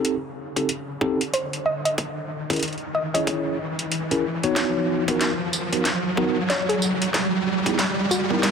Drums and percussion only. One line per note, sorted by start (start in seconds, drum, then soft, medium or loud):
0.05 closed hi-hat medium
0.56 kick medium
0.56 closed hi-hat medium
0.69 closed hi-hat medium
1.01 kick loud
1.21 closed hi-hat medium
1.34 closed hi-hat medium
1.53 closed hi-hat soft
1.85 closed hi-hat medium
1.98 kick loud
1.98 closed hi-hat medium
2.50 kick loud
2.50 closed hi-hat soft
2.53 closed hi-hat soft
2.56 closed hi-hat soft
2.59 closed hi-hat soft
2.63 closed hi-hat medium
2.68 closed hi-hat soft
2.73 closed hi-hat soft
2.78 closed hi-hat soft
3.15 kick medium
3.15 closed hi-hat medium
3.27 kick loud
3.27 closed hi-hat medium
3.79 closed hi-hat soft
3.92 closed hi-hat medium
4.11 closed hi-hat soft
4.43 closed hi-hat medium
4.56 kick loud
4.56 snare soft
4.56 closed hi-hat medium
5.08 kick loud
5.08 closed hi-hat soft
5.21 snare soft
5.21 closed hi-hat medium
5.53 tambourine medium
5.73 kick medium
5.73 closed hi-hat medium
5.85 snare soft
5.85 closed hi-hat medium
6.17 kick loud
6.50 snare medium
6.50 closed hi-hat medium
6.70 closed hi-hat soft
6.82 tambourine medium
7.02 closed hi-hat soft
7.14 kick loud
7.14 snare medium
7.14 closed hi-hat medium
7.66 kick loud
7.66 closed hi-hat soft
7.79 snare medium
7.79 closed hi-hat medium
8.11 tambourine medium
8.30 kick medium
8.43 kick loud
8.43 snare medium
8.43 closed hi-hat medium